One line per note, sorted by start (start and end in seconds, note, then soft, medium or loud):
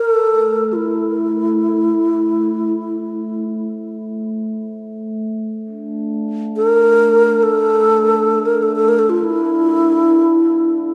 0.00 0.74 A4 medium
0.25 8.94 A3 soft
0.73 3.45 E4 medium
0.73 0.77 F4 soft
5.65 10.94 D4 soft
6.57 7.44 A#4 medium
7.43 8.47 A4 loud
8.45 8.64 A#4 medium
8.62 8.75 A4 medium
8.76 8.90 A4 medium
8.88 9.00 A#4 medium
8.99 9.11 A4 medium
9.10 9.25 F4 medium
9.24 10.79 E4 medium